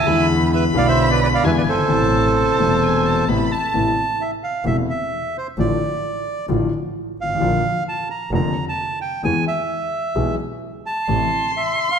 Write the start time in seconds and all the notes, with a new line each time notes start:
Already playing: E5 G#5
0.01 D#2
0.06 E2 D3 E3 G#3 B3 E4 B5
0.54 B4 E5 B5
0.73 B1 B2 D3 G#3 B3 E4 F5
0.78 D5
0.88 C5 E5
1.10 B4 D5
1.23 B4 D5
1.34 D5 F5
1.43 E2 D3 E3 G#3 B3 E4 B4 E5 G#5
1.58 B4 D5
1.66 G1 A4 C5
1.73 F#1
1.78 G1
1.83 G#1 C3
1.88 A1 A2 B2 A3 E4 A5
2.37 A5
2.57 E1 E2 B2 C3 A3 E4
2.83 G#5
3.06 A5
3.27 A1 A2 C3 A3 B3 E4 B5
3.46 B5
3.51 A5
3.74 A1 A2 C3 A3 B3 E4
4.21 E5
4.43 F5
4.65 E1 E2 C3 A3 B3 E4 E5
4.90 E5
5.38 C5
5.58 A1 A2 D3 F3 A3 F4 D5
6.48 A1 A2 D3 F3 A3 F4
7.18 G#1 F5
7.23 G1
7.29 G#1
7.35 A1
7.40 A#1 A#2 D3 F3 A#3 F4
7.88 A5
8.10 A#5
8.31 F1 F2 D3 F3 A#3 F4 A#5
8.69 A5
9.01 G5
9.23 E2 E3 G#3 B3 G#4 G#5
9.47 E5
10.15 B1 B2 E3 G#3 B3 G#4
10.86 A5
11.08 A1 A2 C3 E3 A3 E4 C6
11.57 E5
11.91 F5